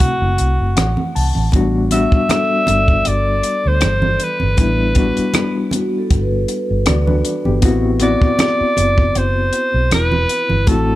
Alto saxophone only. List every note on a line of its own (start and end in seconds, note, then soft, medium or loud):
0.00 1.17 F#4 medium
1.92 3.09 E5 loud
3.08 3.69 D5 medium
3.68 4.25 C5 medium
4.23 5.74 B4 medium
8.02 9.19 D5 loud
9.17 9.93 C5 medium
9.94 10.70 B4 medium
10.68 10.95 A4 medium